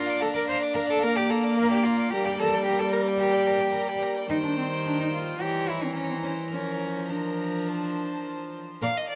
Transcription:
0.00 1.05 D4 medium
0.00 0.21 F4 loud
0.00 0.11 A#5 medium
0.06 0.21 D5 medium
0.06 0.23 D6 medium
0.20 0.27 A4 loud
0.20 0.36 F5 medium
0.20 0.35 A#5 medium
0.34 0.48 A#4 medium
0.34 0.46 D5 medium
0.34 0.47 D6 medium
0.47 0.57 C5 loud
0.47 0.62 F5 medium
0.47 0.64 A#5 medium
0.60 0.75 D5 medium
0.60 0.75 D6 medium
0.74 0.81 A#4 medium
0.74 0.88 F5 medium
0.74 0.91 A#5 medium
0.87 1.04 A4 medium
0.87 1.00 D5 medium
0.87 1.02 D6 medium
1.01 2.14 A#3 medium
1.01 1.18 A#4 loud
1.01 1.17 F5 medium
1.01 1.18 A#5 medium
1.16 1.31 G4 medium
1.16 1.32 D5 medium
1.16 1.32 D6 medium
1.29 1.57 A4 medium
1.29 1.45 F5 medium
1.29 1.46 A#5 medium
1.44 1.58 D5 medium
1.44 1.58 D6 medium
1.57 1.70 A#4 loud
1.57 1.73 F5 medium
1.57 1.73 A#5 medium
1.71 1.85 G4 medium
1.71 1.87 D5 medium
1.71 1.87 D6 medium
1.83 2.12 F4 medium
1.83 1.98 F5 medium
1.83 2.01 A#5 medium
1.97 2.11 D5 soft
1.97 2.12 D6 medium
2.11 4.29 G3 medium
2.11 2.25 G4 loud
2.11 2.26 A#4 medium
2.11 2.27 A#5 medium
2.24 2.31 G4 medium
2.24 2.42 D5 medium
2.24 2.41 G5 medium
2.38 2.65 A4 loud
2.38 2.56 A#4 medium
2.38 2.56 A#5 medium
2.54 2.66 D5 medium
2.54 2.66 G5 medium
2.65 2.81 G4 medium
2.65 2.81 A#4 medium
2.65 2.82 A#5 medium
2.79 2.92 A4 medium
2.79 2.94 D5 medium
2.79 2.95 G5 medium
2.92 3.00 A#4 medium
2.92 3.08 A#4 medium
2.92 3.09 A#5 medium
3.07 3.18 D5 medium
3.07 3.20 G5 medium
3.19 4.01 G4 loud
3.19 3.34 A#4 medium
3.19 3.33 A#5 medium
3.32 3.48 D5 medium
3.32 3.48 G5 medium
3.47 3.61 A#4 medium
3.47 3.63 A#5 medium
3.59 3.72 D5 medium
3.59 3.73 G5 medium
3.72 3.89 A#4 medium
3.72 3.90 A#5 medium
3.87 4.04 D5 soft
3.87 4.04 G5 medium
4.02 4.19 A#4 medium
4.02 4.16 A#5 soft
4.15 4.30 D5 soft
4.15 4.30 G5 medium
4.30 5.37 D#3 medium
4.30 4.36 D#4 loud
4.30 5.37 C5 medium
4.30 5.38 G5 medium
4.44 4.57 D4 medium
4.58 4.66 C4 medium
4.86 5.00 D4 medium
5.00 5.06 D#4 medium
5.13 5.43 F4 medium
5.40 6.54 E3 medium
5.40 5.71 G4 medium
5.40 5.94 C#5 medium
5.40 5.95 A#5 medium
5.69 5.85 E4 medium
5.83 5.97 C4 medium
5.95 6.10 C#4 medium
5.95 6.23 C#5 medium
5.95 6.50 A#5 medium
6.10 6.16 C4 medium
6.23 6.32 C#4 medium
6.23 6.51 C5 soft
6.50 8.62 F3 medium
6.50 7.12 C#4 medium
6.50 7.09 A#4 soft
6.50 7.08 A#5 soft
7.09 8.54 D4 medium
7.09 7.70 A#4 soft
7.09 7.70 A#5 soft
7.68 8.62 C5 medium
7.68 8.61 A5 soft
8.81 8.88 A#2 medium
8.81 8.87 A#4 medium
8.81 8.88 D5 medium
8.81 8.99 F5 medium
8.97 9.09 D#5 medium
9.10 9.15 D5 medium

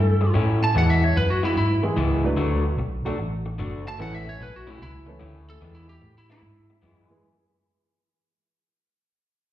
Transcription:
0.00 0.33 G2 medium
0.00 0.33 A4 loud
0.21 muted clean electric guitar stroke soft
0.34 0.62 A2 medium
0.34 0.75 A2 medium
0.34 0.62 A3 medium
0.34 0.61 C#4 medium
0.34 0.61 E4 medium
0.62 0.76 A5 medium
0.62 muted clean electric guitar stroke soft
0.75 1.15 E2 medium
0.75 1.03 E3 medium
0.75 1.03 G#3 medium
0.75 1.02 B3 medium
0.75 1.02 E4 medium
0.75 0.90 F#5 medium
0.90 1.04 E5 medium
1.03 1.16 C#5 medium
1.03 muted clean electric guitar stroke soft
1.16 1.56 F#2 medium
1.16 1.30 B4 medium
1.16 muted clean electric guitar stroke soft
1.30 1.43 F#4 medium
1.43 1.55 E3 medium
1.43 1.55 G#3 medium
1.43 1.56 B3 medium
1.43 1.56 E4 loud
1.43 1.56 E4 medium
1.56 1.96 G#2 medium
1.56 1.84 E4 medium
1.56 muted clean electric guitar stroke soft
1.83 1.95 E3 medium
1.83 1.95 G#3 medium
1.83 1.96 B3 medium
1.83 1.96 E4 medium
1.83 1.96 G#4 medium
1.83 muted clean electric guitar stroke soft
1.97 2.36 C#2 medium
1.97 2.24 E3 medium
1.97 2.24 G#3 medium
1.97 2.24 B3 loud
1.97 2.23 E4 medium
2.24 2.75 F#3 medium
2.24 2.75 A3 medium
2.24 2.76 D4 medium
2.24 2.76 F#4 medium
2.24 2.76 B4 medium
2.24 muted clean electric guitar stroke soft
2.37 2.77 D2 medium
2.37 2.65 D3 medium
2.37 2.65 A3 medium
2.37 2.64 D4 medium
2.37 2.64 F#4 loud
2.65 muted clean electric guitar stroke soft
2.77 3.03 B1 medium
2.77 muted clean electric guitar stroke soft
3.05 3.17 D3 medium
3.05 3.17 F#3 medium
3.05 3.18 A3 medium
3.05 3.17 A3 medium
3.05 3.18 D4 medium
3.05 3.18 F#4 medium
3.05 3.18 A4 medium
3.05 muted fingered electric bass stroke soft
3.18 3.58 A1 medium
3.18 muted clean electric guitar stroke soft
3.46 muted clean electric guitar stroke medium
3.58 3.98 F#1 medium
3.58 3.86 D3 medium
3.58 3.86 A3 medium
3.58 3.86 D4 medium
3.58 3.85 F#4 loud
3.87 4.00 A5 medium
3.87 muted clean electric guitar stroke medium
3.98 4.39 A1 medium
3.98 4.27 A2 medium
3.98 4.24 E3 medium
3.98 4.26 A3 medium
3.98 4.25 A3 medium
3.98 4.24 C#4 medium
3.98 4.26 C#4 medium
3.98 4.25 E4 medium
3.98 4.25 A4 medium
3.98 4.14 F#5 medium
4.15 4.27 E5 medium
4.27 4.41 C#5 medium
4.27 muted clean electric guitar stroke soft
4.40 4.80 B1 medium
4.40 4.55 B4 medium
4.40 muted clean electric guitar stroke soft
4.56 4.70 F#4 medium
4.67 4.79 A2 medium
4.67 4.79 A3 medium
4.67 4.79 C#4 medium
4.67 4.79 E4 medium
4.67 4.81 E4 medium
4.80 5.20 C#2 medium
4.80 5.08 E4 medium
4.80 muted clean electric guitar stroke soft
5.06 5.20 E3 medium
5.06 5.20 A3 medium
5.06 5.20 C#4 medium
5.06 5.20 E4 medium
5.06 5.20 A4 medium
5.06 muted clean electric guitar stroke soft
5.19 5.61 D2 medium
5.19 5.48 A2 loud
5.19 5.47 A3 medium
5.19 5.47 C#4 medium
5.19 5.47 E4 loud
5.48 5.75 A4 medium
5.48 muted clean electric guitar stroke medium
5.61 6.01 E2 medium
5.61 5.89 E3 medium
5.61 5.88 G#3 medium
5.61 5.88 B3 loud
5.61 5.87 E4 loud
5.75 5.88 E4 medium
5.89 6.15 G4 medium
5.89 muted clean electric guitar stroke soft
6.01 6.41 A2 medium
6.01 muted clean electric guitar stroke soft
6.18 6.30 E4 medium
6.30 6.42 E3 medium
6.30 6.42 G#3 medium
6.30 6.42 B3 medium
6.30 6.42 E4 medium
6.30 7.22 E4 loud
6.42 6.82 G#2 medium
6.42 muted clean electric guitar stroke soft
6.70 muted clean electric guitar stroke soft
6.82 7.23 F#2 medium
6.82 7.10 E3 medium
6.82 7.10 G#3 medium
6.82 7.10 B3 medium
6.82 7.10 E4 loud
7.09 7.23 E3 medium
7.09 7.23 G#3 medium
7.09 7.24 B3 medium
7.09 7.24 E4 medium
7.09 7.24 G#4 medium
7.09 muted clean electric guitar stroke soft

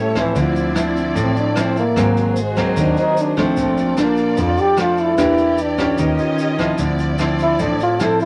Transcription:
0.00 0.33 A2 medium
0.00 0.12 G3 medium
0.00 0.34 A3 medium
0.00 0.18 A3 medium
0.00 0.12 C#4 medium
0.00 0.12 E4 medium
0.00 1.94 E4 medium
0.00 0.33 G4 medium
0.00 0.35 C#5 medium
0.15 0.42 E3 medium
0.15 0.72 F3 medium
0.15 0.73 C4 medium
0.15 0.73 E4 medium
0.15 kick soft
0.15 cross-stick medium
0.15 closed hi-hat soft
0.15 shaker soft
0.35 1.12 D2 medium
0.35 1.14 D3 soft
0.35 1.95 C4 medium
0.35 1.95 D5 medium
0.35 kick medium
0.35 closed hi-hat medium
0.35 shaker medium
0.41 0.78 F3 medium
0.56 closed hi-hat soft
0.56 shaker soft
0.75 1.52 F3 soft
0.75 1.53 C4 soft
0.75 1.53 E4 medium
0.75 cross-stick medium
0.75 closed hi-hat soft
0.75 shaker medium
0.96 closed hi-hat soft
0.96 shaker soft
1.15 1.34 A1 medium
1.15 1.94 A2 medium
1.15 kick medium
1.15 closed hi-hat soft
1.15 shaker medium
1.22 1.38 C4 medium
1.36 1.63 D4 medium
1.36 closed hi-hat soft
1.36 shaker soft
1.56 1.82 F3 medium
1.56 1.82 C4 medium
1.56 1.83 E4 medium
1.56 cross-stick medium
1.56 closed hi-hat soft
1.56 shaker medium
1.61 1.79 C4 medium
1.76 2.43 A#3 medium
1.76 closed hi-hat soft
1.76 shaker soft
1.96 2.73 G#1 medium
1.96 2.75 G#2 soft
1.96 2.36 F#3 soft
1.96 2.36 A#3 soft
1.96 2.37 C4 medium
1.96 3.56 F#4 medium
1.96 3.56 G#4 medium
1.96 3.56 C5 medium
1.96 kick medium
1.96 cross-stick medium
1.96 closed hi-hat medium
1.96 shaker medium
2.17 closed hi-hat soft
2.17 shaker soft
2.36 closed hi-hat soft
2.36 shaker medium
2.41 2.83 G#3 medium
2.56 3.34 F#3 medium
2.56 3.34 A#3 medium
2.56 3.35 C4 medium
2.56 kick medium
2.56 cross-stick medium
2.56 closed hi-hat soft
2.56 shaker soft
2.76 2.96 D#2 medium
2.76 3.55 D#3 medium
2.76 kick medium
2.76 closed hi-hat medium
2.76 shaker medium
2.81 3.01 D4 medium
2.96 3.23 D#4 loud
2.96 closed hi-hat soft
2.96 shaker soft
3.17 closed hi-hat soft
3.17 shaker medium
3.21 3.41 D4 medium
3.37 3.94 F3 medium
3.37 3.94 A3 medium
3.37 4.03 C4 medium
3.37 3.94 D4 medium
3.37 kick medium
3.37 cross-stick medium
3.37 closed hi-hat soft
3.37 shaker soft
3.57 4.34 A#1 medium
3.57 4.36 A#2 soft
3.57 5.17 F4 medium
3.57 5.17 A4 medium
3.57 5.16 D5 medium
3.57 kick medium
3.57 closed hi-hat medium
3.57 shaker medium
3.77 closed hi-hat soft
3.77 shaker soft
3.97 4.74 F3 soft
3.97 4.75 D4 medium
3.97 cross-stick medium
3.97 closed hi-hat soft
3.97 shaker medium
4.01 4.43 A#3 medium
4.17 closed hi-hat soft
4.17 shaker soft
4.37 5.16 F2 medium
4.37 4.56 F2 medium
4.37 kick medium
4.37 closed hi-hat medium
4.37 shaker medium
4.41 4.62 F4 medium
4.57 4.83 G4 loud
4.57 closed hi-hat soft
4.57 shaker soft
4.77 5.14 F3 medium
4.77 5.15 A3 medium
4.77 5.15 D4 medium
4.77 cross-stick medium
4.77 closed hi-hat soft
4.77 shaker medium
4.81 5.02 F4 medium
4.97 5.63 E4 loud
4.97 closed hi-hat soft
4.97 shaker soft
5.18 5.95 E2 medium
5.18 5.96 E3 medium
5.18 5.58 A#3 soft
5.18 5.58 D4 medium
5.18 5.98 E4 medium
5.18 5.98 G4 medium
5.18 5.58 G4 medium
5.18 5.98 D5 medium
5.18 kick medium
5.18 cross-stick medium
5.18 closed hi-hat medium
5.18 shaker medium
5.38 closed hi-hat soft
5.38 shaker soft
5.58 closed hi-hat soft
5.58 shaker medium
5.62 6.00 D4 medium
5.78 6.55 C#4 medium
5.78 6.56 F4 medium
5.78 6.56 G4 medium
5.78 kick medium
5.78 cross-stick medium
5.78 closed hi-hat soft
5.78 shaker soft
5.98 6.17 D#2 medium
5.98 6.77 D#3 medium
5.98 6.78 C#4 medium
5.98 6.78 F4 medium
5.98 6.78 G4 medium
5.98 6.78 D#5 medium
5.98 kick medium
5.98 closed hi-hat medium
5.98 shaker medium
6.18 closed hi-hat soft
6.18 shaker soft
6.38 closed hi-hat soft
6.38 shaker medium
6.58 7.16 F3 medium
6.58 7.16 C4 medium
6.58 7.16 E4 medium
6.58 kick soft
6.58 cross-stick medium
6.58 closed hi-hat soft
6.58 shaker soft
6.78 7.56 D2 medium
6.78 7.58 D3 soft
6.78 8.25 C4 medium
6.78 8.25 E4 medium
6.78 8.25 D5 medium
6.78 kick medium
6.78 closed hi-hat medium
6.78 shaker medium
6.99 closed hi-hat soft
6.99 shaker soft
7.18 7.73 F3 medium
7.18 7.74 C4 soft
7.18 7.74 E4 medium
7.18 cross-stick medium
7.18 closed hi-hat soft
7.18 shaker medium
7.39 7.65 E4 medium
7.39 closed hi-hat soft
7.39 shaker soft
7.59 7.78 A1 loud
7.59 8.25 A2 medium
7.59 kick medium
7.59 closed hi-hat medium
7.59 shaker medium
7.64 7.82 D4 medium
7.79 closed hi-hat soft
7.79 shaker soft
7.83 8.05 F4 medium
8.00 8.25 F3 medium
8.00 8.25 C4 medium
8.00 8.25 E4 medium
8.00 cross-stick medium
8.00 closed hi-hat soft
8.00 shaker medium
8.04 8.22 A4 medium
8.20 closed hi-hat soft
8.20 shaker soft

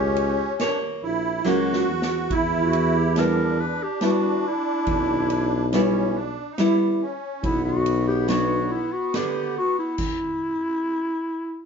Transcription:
0.00 0.51 C#2 loud
0.00 0.70 C#4 loud
0.00 1.04 G4 medium
0.16 ride soft
0.60 1.03 A#3 medium
0.60 0.80 D4 medium
0.60 1.03 C#5 medium
0.60 snare medium
0.60 ride soft
1.03 1.42 A#1 medium
1.03 1.47 E4 medium
1.44 1.84 C#2 medium
1.44 1.88 F#3 medium
1.44 1.88 A#3 medium
1.44 1.89 C#4 medium
1.44 2.34 F#4 loud
1.44 snare soft
1.73 snare medium
1.88 2.27 E2 medium
2.02 snare medium
2.30 3.85 E2 loud
2.30 3.19 E4 loud
2.30 2.56 E4 medium
2.30 kick medium
2.30 ride soft
2.55 2.99 F#4 medium
2.73 ride medium
2.97 3.20 G4 medium
3.16 3.59 G3 medium
3.16 3.60 B3 medium
3.16 4.00 D4 medium
3.16 3.61 E4 medium
3.16 3.61 A#4 medium
3.16 snare medium
3.16 ride soft
3.60 3.84 B4 medium
3.83 4.07 G4 medium
4.01 4.44 G3 medium
4.01 4.45 B3 medium
4.01 5.69 D4 medium
4.01 4.45 E4 medium
4.01 snare medium
4.01 ride soft
4.05 4.49 F#4 medium
4.47 6.17 E4 medium
4.87 6.41 B1 loud
4.87 kick medium
4.87 ride soft
5.30 ride medium
5.73 6.16 G3 medium
5.73 6.16 B3 medium
5.73 6.17 C#4 medium
5.73 6.17 E4 medium
5.73 snare medium
5.73 ride soft
6.15 6.52 D4 medium
6.52 6.59 D#4 medium
6.58 7.01 G3 medium
6.58 7.02 B3 medium
6.58 6.78 E4 medium
6.58 7.02 E4 medium
6.58 snare medium
6.58 ride soft
7.02 7.46 C#4 medium
7.43 8.97 B1 loud
7.43 9.96 B3 medium
7.43 7.64 E4 loud
7.43 kick medium
7.43 ride soft
7.65 8.05 F#4 medium
7.86 ride medium
8.08 8.28 G4 loud
8.28 8.71 F#3 medium
8.28 8.72 B3 medium
8.28 8.72 D4 medium
8.28 8.74 F#4 loud
8.28 snare medium
8.28 ride soft
8.72 8.94 E4 medium
8.92 9.17 F#4 medium
9.14 9.57 D3 medium
9.14 9.57 B3 medium
9.14 9.58 D4 medium
9.14 9.57 G4 medium
9.14 snare medium
9.14 ride soft
9.58 9.77 F#4 medium
9.79 11.66 E4 medium
9.98 kick medium
9.98 crash medium

